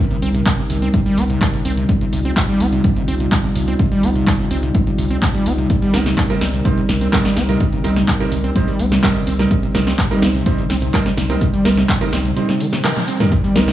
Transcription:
Already playing: G3 C4 D#4 A#4
0.11 C3, closed hi-hat
0.22 C2 C4, open hi-hat
0.35 C3, closed hi-hat
0.46 C3, kick, clap, closed hi-hat
0.58 C3
0.70 C2 C3, open hi-hat
0.82 C4, closed hi-hat
0.94 C3, kick, closed hi-hat
1.06 G3, closed hi-hat
1.17 C2 C4, open hi-hat
1.30 C3, closed hi-hat
1.41 C3, kick, clap, closed hi-hat
1.54 C3, closed hi-hat
1.65 C2 C4, open hi-hat
1.77 C3, closed hi-hat
1.89 C3 F4, kick, closed hi-hat
2.01 C3, closed hi-hat
2.13 C2 C3, open hi-hat
2.25 C4, closed hi-hat
2.37 C3, kick, clap, closed hi-hat
2.49 G3
2.60 C2 C4, open hi-hat
2.73 C3, closed hi-hat
2.84 C3, kick, closed hi-hat
2.96 C3, closed hi-hat
3.08 C2 C4, open hi-hat
3.20 C3, closed hi-hat
3.32 C3, kick, clap, closed hi-hat
3.44 C3, closed hi-hat
3.56 C2 C3, open hi-hat
3.68 C4, closed hi-hat
3.79 C3, kick, closed hi-hat
3.92 G3, closed hi-hat
4.03 C2 C4, open hi-hat
4.15 C3, closed hi-hat
4.27 C3, kick, clap, closed hi-hat
4.39 C3
4.51 C2 C4, open hi-hat
4.63 C3, closed hi-hat
4.75 C3, kick, closed hi-hat
4.87 C3, closed hi-hat
4.98 C2 C3, open hi-hat
5.11 C4, closed hi-hat
5.22 C3, kick, clap, closed hi-hat
5.35 G3, closed hi-hat
5.46 C2 C4, open hi-hat
5.58 C3, closed hi-hat
5.70 C3 A#4, kick, closed hi-hat, shaker
5.82 G3, closed hi-hat
5.94 C2 G3 C4 D#4 A#4, snare, open hi-hat, shaker
6.06 C3, snare, closed hi-hat, shaker
6.17 C3, kick, clap, closed hi-hat, shaker
6.30 C3 G3 C4 D#4 A#4, shaker
6.41 C2 C4, snare, open hi-hat, shaker
6.54 C3, closed hi-hat, shaker
6.65 C3 G3 C4 D#4 C5, kick, closed hi-hat, shaker
6.77 C3, closed hi-hat, shaker
6.89 C2 C3, snare, open hi-hat, shaker
7.01 C4, closed hi-hat, shaker
7.13 C3 G3 C4 D#4 A#4, kick, clap, closed hi-hat, shaker
7.25 G3, snare, closed hi-hat, shaker
7.36 C2 C4, snare, open hi-hat, shaker
7.49 C3 G3 C4 D#4 A#4, closed hi-hat, shaker
7.60 C3, kick, closed hi-hat, shaker
7.73 C3, closed hi-hat
7.84 C2 G3 C4 D#4 A#4, open hi-hat, shaker
7.96 C3, snare, closed hi-hat, shaker
8.08 C3, kick, clap, closed hi-hat, shaker
8.20 C3 G3 C4 D#4 A#4, shaker
8.32 C2 C3, open hi-hat, shaker
8.44 C4, closed hi-hat, shaker
8.55 C3 G3 C4 D#4 C5, kick, closed hi-hat, shaker
8.68 G3, closed hi-hat, shaker
8.79 C2 C4, open hi-hat, shaker
8.92 C3, snare, closed hi-hat, shaker
9.03 C3 G3 C4 D#4 A#4, kick, clap, closed hi-hat, shaker
9.15 C3, closed hi-hat, shaker
9.27 C2 C4, open hi-hat, shaker
9.39 C3 G3 C4 D#4 A#4, snare, closed hi-hat, shaker
9.51 C3 C5, kick, closed hi-hat, shaker
9.63 C3, closed hi-hat
9.75 C2 C3 G3 C4 D#4 A#4, snare, open hi-hat, shaker
9.87 C4, snare, closed hi-hat, shaker
9.98 C3, kick, clap, closed hi-hat, shaker
10.11 G3 C4 D#4 A#4, shaker
10.22 C2 C4, snare, open hi-hat, shaker
10.35 C3, closed hi-hat, shaker
10.46 C3 G3 C4 D#4 C5, kick, closed hi-hat, shaker
10.58 C3, closed hi-hat, shaker
10.70 C2 C4, snare, open hi-hat, shaker
10.82 C3, closed hi-hat, shaker
10.94 C3 G3 C4 D#4 A#4, kick, clap, closed hi-hat, shaker
11.06 C3, snare, closed hi-hat, shaker
11.17 C2 C3, snare, open hi-hat, shaker
11.30 G3 C4 D#4 A#4, closed hi-hat, shaker
11.41 C3, kick, closed hi-hat, shaker
11.54 G3, closed hi-hat, shaker
11.65 C2 G3 C4 D#4 A#4, snare, open hi-hat, shaker
11.77 C3, snare, closed hi-hat, shaker
11.89 C3, kick, clap, closed hi-hat, shaker
12.01 C3 G3 C4 D#4 A#4, closed hi-hat, shaker
12.13 C2 C4, snare, open hi-hat, shaker
12.25 C3, closed hi-hat, shaker
12.36 C3 G3 C4 D#4 C5, closed hi-hat, shaker
12.49 C3, snare, closed hi-hat, shaker
12.60 D#3, open hi-hat, shaker
12.73 C3, snare, closed hi-hat, shaker
12.84 C3 G3 C4 D#4 A#4, clap, closed hi-hat, high tom, shaker
12.96 C3, closed hi-hat, high tom, shaker
13.08 C4, open hi-hat, shaker
13.20 A#2 G3 C4 D#4 A#4, snare, closed hi-hat, mid tom, shaker
13.32 C3 G3 C4 D#4 A#4, kick, closed hi-hat, shaker
13.44 G3, closed hi-hat, shaker
13.56 C2 G3 C4 D#4 A#4, snare, open hi-hat, low conga, shaker
13.68 C3, snare, closed hi-hat, shaker

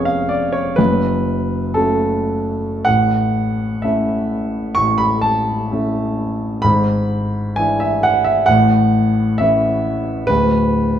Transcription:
Already playing: F1 F2 B3 C#4 G#4 C#5 F5
0.05 F5
0.29 D5
0.53 C#5
0.76 F#1 F#2 B4
1.74 A3 C#4 F#4 A4
2.85 A1 A2 F#5
3.82 A3 C#4 E4 E5
4.75 A1 A2 C#6
4.98 B5
5.21 A5
5.72 A3 C#4 E4
6.62 G#1 G#2 B5
7.56 E3 D4 E4 G#5
7.80 E5
8.03 F#5
8.24 E5
8.46 A1 A2 F#5
9.38 E3 C#4 E4 E5
10.27 D1 D2 B4

